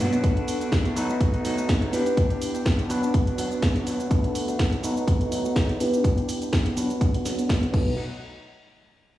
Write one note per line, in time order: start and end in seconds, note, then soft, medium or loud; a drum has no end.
0.00 0.17 B2 medium
0.00 0.23 F#3 medium
0.00 0.19 B3 medium
0.00 0.23 B3 medium
0.00 0.19 D4 medium
0.00 0.23 D4 medium
0.00 0.19 F#4 medium
0.00 0.23 F#4 medium
0.00 0.20 B4 loud
0.00 shaker medium
0.13 closed hi-hat soft
0.13 shaker soft
0.23 0.37 A3 medium
0.23 0.91 B3 medium
0.23 0.92 D4 medium
0.23 0.37 D4 loud
0.23 0.92 F#4 medium
0.23 0.35 F#4 loud
0.23 0.92 A4 medium
0.23 0.92 B4 medium
0.23 kick loud
0.23 closed hi-hat medium
0.23 shaker soft
0.36 0.61 D4 soft
0.36 0.59 F#4 medium
0.36 closed hi-hat medium
0.48 open hi-hat loud
0.48 shaker medium
0.60 0.71 D4 soft
0.60 0.72 F#4 medium
0.60 closed hi-hat soft
0.60 shaker soft
0.72 0.95 A3 medium
0.72 0.96 D4 medium
0.72 0.97 F#4 medium
0.72 kick loud
0.72 snare loud
0.72 closed hi-hat medium
0.72 shaker soft
0.85 closed hi-hat soft
0.96 1.09 F#3 medium
0.96 1.10 A3 medium
0.96 1.88 B3 medium
0.96 1.88 D#4 medium
0.96 1.09 D#4 medium
0.96 1.89 F#4 medium
0.96 1.08 F#4 medium
0.96 1.89 A4 medium
0.96 1.89 B4 medium
0.96 open hi-hat loud
0.96 shaker medium
1.09 1.34 A3 soft
1.09 1.33 D#4 medium
1.09 1.32 F#4 medium
1.09 shaker soft
1.21 kick loud
1.21 closed hi-hat medium
1.21 shaker soft
1.33 1.44 A3 medium
1.33 1.44 D#4 medium
1.33 1.44 F#4 medium
1.33 closed hi-hat medium
1.44 1.57 F#3 medium
1.44 1.58 A3 medium
1.44 1.57 D#4 medium
1.44 1.56 F#4 medium
1.44 open hi-hat loud
1.44 shaker medium
1.57 1.68 A3 medium
1.57 1.68 D#4 medium
1.57 1.69 F#4 medium
1.57 shaker soft
1.68 1.93 F#3 medium
1.68 1.92 A3 medium
1.68 1.93 D#4 loud
1.68 1.94 F#4 loud
1.68 kick loud
1.68 snare loud
1.68 closed hi-hat medium
1.68 shaker soft
1.82 closed hi-hat soft
1.92 2.85 B3 medium
1.92 2.06 B3 medium
1.92 2.85 D4 medium
1.92 2.06 D4 medium
1.92 2.86 E4 medium
1.92 2.86 G4 medium
1.92 2.04 G4 medium
1.92 2.86 B4 medium
1.92 open hi-hat loud
1.92 shaker medium
2.06 2.16 D4 soft
2.06 2.17 G4 medium
2.06 closed hi-hat soft
2.06 shaker soft
2.17 2.30 B3 loud
2.17 2.31 D4 medium
2.17 2.29 G4 loud
2.17 kick loud
2.17 closed hi-hat medium
2.17 shaker soft
2.30 2.55 D4 medium
2.30 2.53 G4 medium
2.30 closed hi-hat medium
2.42 open hi-hat loud
2.42 shaker medium
2.54 2.65 D4 medium
2.54 2.65 G4 medium
2.54 closed hi-hat soft
2.54 shaker soft
2.65 2.89 B3 medium
2.65 2.89 D4 medium
2.65 2.90 G4 medium
2.65 kick loud
2.65 snare loud
2.65 closed hi-hat medium
2.65 shaker soft
2.79 closed hi-hat medium
2.89 3.03 F#3 medium
2.89 4.06 B3 medium
2.89 3.03 B3 medium
2.89 4.06 D4 medium
2.89 3.02 D4 medium
2.89 4.06 F#4 medium
2.89 3.01 F#4 medium
2.89 4.07 B4 loud
2.89 open hi-hat loud
2.89 shaker medium
3.02 3.27 B3 soft
3.02 3.27 D4 medium
3.02 3.26 F#4 medium
3.02 shaker soft
3.14 kick loud
3.14 closed hi-hat medium
3.14 shaker soft
3.27 3.37 B3 medium
3.27 3.38 D4 medium
3.27 3.38 F#4 medium
3.27 closed hi-hat medium
3.38 3.51 F#3 medium
3.38 3.51 B3 medium
3.38 3.51 D4 medium
3.38 3.50 F#4 medium
3.38 open hi-hat loud
3.38 shaker medium
3.51 3.61 B3 medium
3.51 3.62 D4 medium
3.51 3.62 F#4 medium
3.51 shaker soft
3.62 3.85 F#3 loud
3.62 3.86 B3 medium
3.62 3.86 D4 medium
3.62 3.87 F#4 loud
3.62 kick loud
3.62 snare loud
3.62 closed hi-hat medium
3.62 shaker soft
3.76 closed hi-hat medium
3.86 3.99 F#3 medium
3.86 4.00 B3 medium
3.86 3.99 D4 medium
3.86 3.98 F#4 medium
3.86 open hi-hat loud
3.86 shaker medium
3.99 4.11 B3 soft
3.99 4.10 D4 soft
3.99 4.11 F#4 medium
3.99 closed hi-hat soft
3.99 shaker soft
4.10 4.24 F#3 medium
4.10 4.24 A3 medium
4.10 4.79 B3 medium
4.10 4.79 D4 medium
4.10 4.23 D4 loud
4.10 4.79 F#4 medium
4.10 4.22 F#4 medium
4.10 4.79 A4 medium
4.10 4.79 B4 medium
4.10 kick loud
4.10 closed hi-hat medium
4.10 shaker soft
4.23 4.48 A3 medium
4.23 4.48 D4 medium
4.23 4.46 F#4 medium
4.23 closed hi-hat medium
4.35 open hi-hat loud
4.35 shaker medium
4.48 4.58 A3 medium
4.48 4.59 D4 medium
4.48 4.59 F#4 medium
4.48 closed hi-hat soft
4.48 shaker soft
4.59 4.82 F#3 medium
4.59 4.82 A3 loud
4.59 4.84 F#4 medium
4.59 kick loud
4.59 snare loud
4.59 closed hi-hat medium
4.59 shaker soft
4.72 closed hi-hat medium
4.83 4.96 F#3 medium
4.83 4.97 A3 medium
4.83 5.75 B3 medium
4.83 5.76 D#4 medium
4.83 4.96 D#4 medium
4.83 5.76 F#4 medium
4.83 4.95 F#4 medium
4.83 5.76 A4 medium
4.83 5.76 B4 medium
4.83 open hi-hat loud
4.83 shaker medium
4.96 5.21 A3 medium
4.96 5.20 D#4 medium
4.96 5.19 F#4 medium
4.96 shaker soft
5.08 kick loud
5.08 closed hi-hat medium
5.08 shaker soft
5.20 5.31 A3 medium
5.20 5.31 D#4 medium
5.20 5.32 F#4 medium
5.20 closed hi-hat medium
5.31 5.45 F#3 medium
5.31 5.45 A3 medium
5.31 5.44 D#4 medium
5.31 5.43 F#4 medium
5.31 open hi-hat loud
5.31 shaker medium
5.44 5.55 A3 medium
5.44 5.55 D#4 medium
5.44 5.56 F#4 medium
5.44 shaker soft
5.55 5.80 F#3 medium
5.55 5.79 A3 medium
5.55 kick loud
5.55 snare loud
5.55 closed hi-hat medium
5.55 shaker soft
5.69 closed hi-hat medium
5.80 6.72 B3 medium
5.80 6.03 B3 medium
5.80 6.72 D4 medium
5.80 6.04 D4 medium
5.80 6.73 E4 medium
5.80 6.73 G4 medium
5.80 6.04 G4 medium
5.80 6.73 B4 medium
5.80 open hi-hat loud
5.80 shaker medium
5.93 closed hi-hat soft
5.93 shaker soft
6.04 6.17 B3 medium
6.04 6.18 D4 medium
6.04 6.16 G4 loud
6.04 kick loud
6.04 closed hi-hat medium
6.04 shaker soft
6.17 6.42 D4 medium
6.17 6.40 G4 medium
6.17 closed hi-hat medium
6.29 open hi-hat loud
6.29 shaker medium
6.41 6.52 D4 soft
6.41 6.53 G4 medium
6.41 closed hi-hat soft
6.41 shaker soft
6.52 6.76 B3 medium
6.52 6.77 D4 medium
6.52 6.77 G4 medium
6.52 kick loud
6.52 snare loud
6.52 closed hi-hat medium
6.52 shaker soft
6.66 closed hi-hat medium
6.76 6.90 F#3 medium
6.76 7.71 B3 medium
6.76 6.90 B3 medium
6.76 7.74 D4 medium
6.76 6.89 D4 medium
6.76 7.72 F#4 medium
6.76 6.88 F#4 medium
6.76 7.74 B4 loud
6.76 open hi-hat loud
6.76 shaker medium
6.90 7.14 B3 soft
6.90 7.13 D4 medium
6.90 7.12 F#4 medium
6.90 closed hi-hat soft
6.90 shaker soft
7.01 kick loud
7.01 closed hi-hat medium
7.01 shaker soft
7.14 7.24 B3 medium
7.14 7.25 D4 medium
7.14 7.25 F#4 medium
7.14 closed hi-hat medium
7.25 7.38 F#3 medium
7.25 7.38 B3 medium
7.25 7.38 D4 medium
7.25 7.37 F#4 medium
7.25 snare soft
7.25 open hi-hat loud
7.25 shaker medium
7.38 7.48 B3 soft
7.38 7.49 D4 medium
7.38 7.49 F#4 medium
7.38 closed hi-hat soft
7.38 shaker soft
7.49 7.72 F#3 medium
7.49 7.73 B3 medium
7.49 7.74 F#4 medium
7.49 kick loud
7.49 snare loud
7.49 closed hi-hat medium
7.49 shaker soft
7.63 closed hi-hat medium
7.73 7.96 B1 loud
7.73 7.93 F#3 medium
7.73 7.94 A3 medium
7.73 7.91 B3 medium
7.73 7.92 D#4 medium
7.73 7.94 D#4 medium
7.73 7.92 F#4 medium
7.73 7.94 F#4 medium
7.73 7.92 A4 medium
7.73 7.93 B4 medium
7.73 kick loud
7.73 crash medium